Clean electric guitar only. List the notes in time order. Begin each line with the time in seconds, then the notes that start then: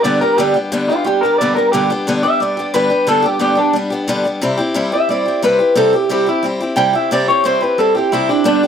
0.03 D5
0.21 A#4
0.38 G4
0.88 F4
1.06 G4
1.21 A#4
1.38 D5
1.55 A#4
1.72 G4
2.23 E5
2.40 D5
2.74 B4
3.09 A4
3.25 G4
3.42 G4
3.58 D4
4.93 E5
5.10 D5
5.44 B4
5.77 A4
5.95 G4
6.12 G4
6.29 E4
6.77 G5
6.96 E5
7.13 D5
7.28 C#5
7.46 C5
7.62 B4
7.79 A4
7.96 G4
8.13 E4
8.29 D4
8.46 D4